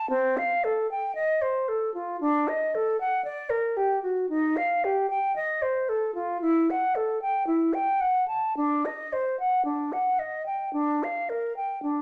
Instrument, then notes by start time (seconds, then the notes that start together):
flute
0.10 C4
0.37 F5
0.64 A4
0.91 G5
1.15 D#5
1.42 C5
1.69 A4
1.94 F4
2.21 D4
2.48 D#5
2.75 A4
3.01 F#5
3.25 D5
3.50 A#4
3.77 G4
4.03 F#4
4.29 D#4
4.57 F5
4.84 G4
5.10 G5
5.36 D#5
5.62 C5
5.89 A4
6.15 F4
6.41 E4
6.70 F#5
6.96 A4
7.22 G5
7.47 E4
7.74 G5
8.01 F#5
8.28 A5
8.57 D4
8.85 D#5
9.13 C5
9.40 F#5
9.65 D4
9.93 F#5
10.19 D#5
10.46 G5
10.73 D4
11.03 F5
11.30 A#4
11.56 G5
11.83 D4